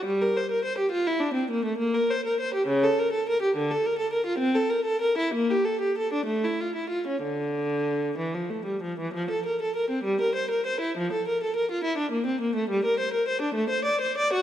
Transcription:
X:1
M:6/8
L:1/16
Q:3/8=67
K:Gdor
V:1 name="Viola"
G, B c B c G F E D C B, A, | [K:Dm] B, B c B c G ^C, A B A B G | D, A B A B F C A B A B E | B, G A G A D A, E F E F ^C |
D,6 E, F, A, G, F, E, | [K:F] F, A B A B C G, B c B c E | F, A B A B F E D B, C B, A, | G, B c B c D A, c d c d ^F |]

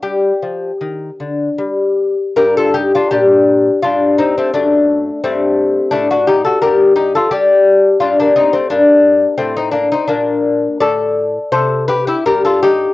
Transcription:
X:1
M:3/4
L:1/16
Q:1/4=85
K:Gm
V:1 name="Lute"
G8 z4 | [GB] [FA] [EG] [DF] [DG]4 [DF]2 [CE] [A,C] | [A,D]4 [A,C]4 [A,D] [D^F] [EG] [FA] | [GB]2 [EG] [FA] [DG]4 [DF] [B,D] [CE] [A,C] |
[B,D]4 [A,C] [CE] [B,D] [CE] [B,D]4 | [Ad]4 [Ac]2 [G=B] [=EG] [G_B] [FA] [_EG]2 |]
V:2 name="Lute" clef=bass
G,2 F,2 E,2 D,2 G,4 | G,,4 B,,4 G,,4 | ^F,,4 G,,4 A,,4 | G,,4 G,4 G,,4 |
G,,4 A,,4 B,,4 | A,,4 C,4 G,,4 |]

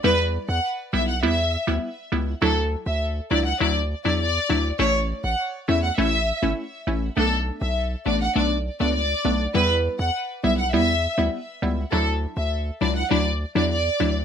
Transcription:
X:1
M:4/4
L:1/16
Q:1/4=101
K:Edor
V:1 name="Violin section"
B z2 f z2 e f e3 z4 z | A z2 e z2 d f d z2 d d3 z | c z2 f z2 e f e3 z4 z | A z2 e z2 d f d z2 d d3 z |
B z2 f z2 e f e3 z4 z | A z2 e z2 d f d z2 d d3 z |]
V:2 name="Synth stab"
[G,B,E]4 z2 [G,B,E] z [G,B,E] z2 [G,B,E] z2 [G,B,E] z | [F,DE]4 z2 [F,DE] z [F,DE] z2 [F,DE] z2 [F,DE] z | [A,CE]4 z2 [A,CE] z [A,CE] z2 [A,CE] z2 [A,CE] z | [A,B,D]4 z2 [A,B,D] z [A,B,D] z2 [A,B,D] z2 [A,B,D] z |
[G,B,E]4 z2 [G,B,E] z [G,B,E] z2 [G,B,E] z2 [G,B,E] z | [F,DE]4 z2 [F,DE] z [F,DE] z2 [F,DE] z2 [F,DE] z |]
V:3 name="808-style bass" clef=bass
E,,3 E,, z2 B,,,2 E,,3 D,, z2 C,,2 | D,,3 D,,3 C,,2 D,,3 E,,3 D,,2 | A,,,3 A,,, z2 E,,2 A,,,3 G,,, z2 A,,,2 | B,,,3 B,,,3 A,,,2 B,,,3 C,,3 B,,,2 |
E,,3 E,, z2 B,,,2 E,,3 D,, z2 C,,2 | D,,3 D,,3 C,,2 D,,3 E,,3 D,,2 |]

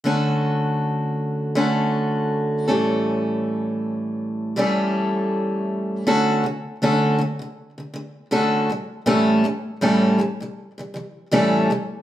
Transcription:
X:1
M:4/4
L:1/16
Q:"Swing 16ths" 1/4=80
K:D
V:1 name="Steel-string acoustic guitar" clef=bass
[D,A,CFA]8 [D,A,CFA]6 [A,,E,G,A,CA]2- | [A,,E,G,A,CA]8 [A,,E,G,A,CA]8 | [D,A,CFA]2 [D,A,]2 [D,A,CFA]2 [D,A,] [D,A,]2 [D,A,] [D,A,]2 [D,A,CFA]2 [A,,E,G,]2 | [A,,E,G,A,CA]2 [A,,E,G,]2 [A,,E,G,A,CA]2 [A,,E,G,] [A,,E,G,]2 [A,,E,G,] [A,,E,G,]2 [A,,E,G,A,CA]2 [A,,E,G,]2 |]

